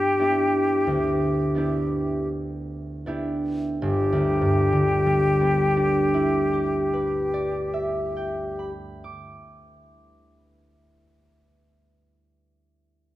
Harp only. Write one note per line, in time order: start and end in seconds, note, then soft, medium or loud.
0.00 2.11 G2 soft
0.00 0.18 B3 soft
0.00 0.19 D4 soft
0.00 0.19 E4 soft
0.00 0.20 G4 soft
0.19 1.54 B3 soft
0.19 1.55 D4 soft
0.19 1.55 E4 soft
0.19 1.56 G4 soft
0.87 3.89 D2 soft
1.55 3.05 B3 soft
1.55 3.06 D4 soft
1.55 3.06 E4 soft
1.55 3.07 G4 soft
3.06 5.40 B3 soft
3.06 5.75 D4 soft
3.06 6.13 E4 soft
3.06 6.52 G4 soft
3.82 8.72 G1 soft
4.13 9.02 D2 soft
4.41 9.31 G2 soft
4.73 9.63 D3 soft
5.06 9.96 G3 soft
5.41 10.31 B3 soft
5.77 10.66 D4 soft
6.14 11.04 E4 soft
6.53 11.43 G4 soft
6.93 11.52 B4 soft
7.34 11.52 D5 soft
7.74 11.52 E5 soft
8.17 11.52 G5 soft
8.59 11.52 B5 soft
9.04 11.52 D6 soft